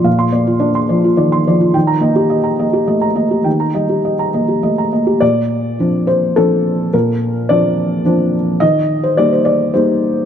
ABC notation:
X:1
M:3/4
L:1/16
Q:1/4=106
K:Bb
V:1 name="Felt piano"
[Ff] c' d F d c' d F d c' d F | g b e G e b e G e b e G | g b e G e b e G e b e G | d6 c2 A4 |
B4 d6 z2 | e3 c d c d2 c4 |]
V:2 name="Felt piano"
[B,,F,]2 B,2 D2 F,2 E,2 F,2 | E,2 B,4 B,2 A,2 B,2 | E,2 G,4 B,2 A,2 B,2 | B,,4 [F,CD]4 [F,CD]4 |
B,,4 [F,CD]4 [F,CD]4 | E,4 [G,B,E]4 [G,B,E]4 |]